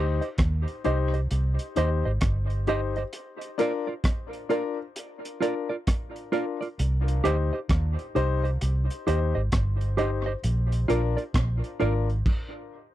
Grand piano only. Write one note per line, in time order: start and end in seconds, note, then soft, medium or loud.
0.00 0.19 D#4 loud
0.00 0.20 G4 medium
0.00 0.20 C5 loud
0.84 1.11 D#4 medium
0.84 1.11 G4 medium
0.84 1.11 C5 loud
1.76 2.02 D#4 medium
1.76 2.03 G4 medium
1.76 2.03 C5 medium
2.67 2.94 D#4 medium
2.67 2.94 G4 medium
2.67 2.94 C5 medium
2.96 3.03 G4 soft
2.96 3.03 C5 soft
3.58 3.85 D4 loud
3.58 3.85 F4 medium
3.58 3.85 A#4 loud
4.49 4.76 D4 medium
4.49 4.76 F4 medium
4.49 4.77 A#4 loud
5.41 5.67 D4 medium
5.41 5.68 F4 medium
5.41 5.68 A#4 medium
6.32 6.59 D4 medium
6.32 6.59 F4 medium
6.32 6.59 A#4 medium
7.24 7.50 D#4 medium
7.24 7.51 G4 medium
7.24 7.51 C5 medium
8.15 8.41 D#4 medium
8.15 8.42 G4 medium
8.15 8.42 C5 loud
9.07 9.33 D#4 medium
9.07 9.33 G4 medium
9.07 9.33 C5 medium
9.98 10.24 D#4 medium
9.98 10.25 G4 medium
9.98 10.25 C5 medium
10.27 10.34 G4 soft
10.27 10.33 C5 soft
10.88 11.15 D4 medium
10.88 11.15 F4 medium
10.88 11.16 A#4 loud
11.79 12.06 D4 medium
11.79 12.06 F4 medium
11.79 12.07 A#4 loud